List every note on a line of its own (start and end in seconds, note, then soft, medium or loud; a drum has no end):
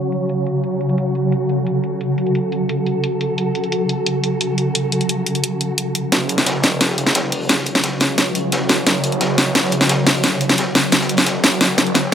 0.00 6.08 C#3 medium
0.00 6.08 F#3 medium
0.00 6.08 F#4 medium
0.00 0.61 C#5 medium
0.12 closed hi-hat medium
0.29 closed hi-hat medium
0.47 closed hi-hat medium
0.64 6.10 A4 medium
0.64 closed hi-hat medium
0.81 closed hi-hat medium
0.89 closed hi-hat soft
0.98 closed hi-hat medium
1.15 closed hi-hat medium
1.32 closed hi-hat medium
1.49 closed hi-hat medium
1.67 closed hi-hat medium
1.84 closed hi-hat medium
2.01 closed hi-hat medium
2.18 closed hi-hat medium
2.27 closed hi-hat soft
2.35 closed hi-hat medium
2.52 closed hi-hat medium
2.69 closed hi-hat medium
2.87 closed hi-hat medium
3.04 closed hi-hat medium
3.21 closed hi-hat medium
3.38 closed hi-hat medium
3.55 closed hi-hat medium
3.64 closed hi-hat soft
3.72 closed hi-hat medium
3.89 closed hi-hat medium
4.06 closed hi-hat medium
4.24 closed hi-hat medium
4.41 closed hi-hat loud
4.58 closed hi-hat medium
4.75 closed hi-hat medium
4.92 closed hi-hat medium
5.01 closed hi-hat soft
5.09 closed hi-hat medium
5.26 closed hi-hat medium
5.35 closed hi-hat soft
5.44 closed hi-hat medium
5.61 closed hi-hat medium
5.78 closed hi-hat loud
5.95 closed hi-hat medium
6.12 6.62 F#1 loud
6.12 12.14 C#3 medium
6.12 12.14 F#3 medium
6.12 11.57 F#4 medium
6.12 11.59 C#5 medium
6.12 snare soft
6.12 closed hi-hat medium
6.29 closed hi-hat medium
6.38 snare soft
6.38 closed hi-hat soft
6.46 snare loud
6.46 closed hi-hat medium
6.63 7.99 E1 loud
6.63 snare medium
6.63 closed hi-hat medium
6.81 snare soft
6.81 closed hi-hat medium
6.89 snare soft
6.98 closed hi-hat medium
7.06 snare medium
7.06 snare soft
7.15 snare loud
7.15 closed hi-hat medium
7.15 closed hi-hat loud
7.32 closed hi-hat medium
7.32 open hi-hat medium
7.49 snare medium
7.49 closed hi-hat medium
7.58 snare soft
7.66 closed hi-hat medium
7.75 snare soft
7.75 closed hi-hat soft
7.84 snare loud
7.84 closed hi-hat medium
8.00 8.51 C#2 loud
8.00 snare medium
8.00 closed hi-hat medium
8.18 snare medium
8.18 closed hi-hat medium
8.18 closed hi-hat loud
8.35 closed hi-hat medium
8.52 8.85 A1 medium
8.52 snare loud
8.52 closed hi-hat loud
8.52 closed hi-hat medium
8.69 snare medium
8.69 closed hi-hat medium
8.86 9.37 F#1 loud
8.86 snare medium
8.86 closed hi-hat medium
8.86 closed hi-hat loud
9.04 closed hi-hat medium
9.12 closed hi-hat soft
9.21 snare loud
9.21 closed hi-hat medium
9.38 10.74 E1 medium
9.38 snare medium
9.38 closed hi-hat medium
9.55 snare medium
9.55 closed hi-hat loud
9.55 closed hi-hat medium
9.64 snare soft
9.71 closed hi-hat medium
9.81 snare medium
9.89 snare loud
9.89 closed hi-hat loud
9.89 closed hi-hat medium
10.07 snare medium
10.07 closed hi-hat medium
10.07 open hi-hat medium
10.23 snare medium
10.23 closed hi-hat medium
10.33 snare soft
10.41 closed hi-hat medium
10.49 snare medium
10.49 closed hi-hat soft
10.58 snare loud
10.58 closed hi-hat medium
10.75 11.35 F#1 loud
10.75 snare medium
10.75 closed hi-hat medium
10.84 closed hi-hat soft
10.92 snare medium
10.92 closed hi-hat medium
11.01 snare loud
11.01 closed hi-hat medium
11.09 closed hi-hat medium
11.17 snare medium
11.17 closed hi-hat medium
11.26 snare loud
11.26 closed hi-hat medium
11.35 11.59 F1 loud
11.44 snare medium
11.44 closed hi-hat medium
11.61 12.11 F#1 loud
11.61 12.14 E4 medium
11.61 12.14 A4 medium
11.61 snare medium
11.61 closed hi-hat medium
11.78 snare medium
11.78 closed hi-hat medium
11.87 closed hi-hat soft
11.95 snare loud
11.95 snare medium
11.95 closed hi-hat medium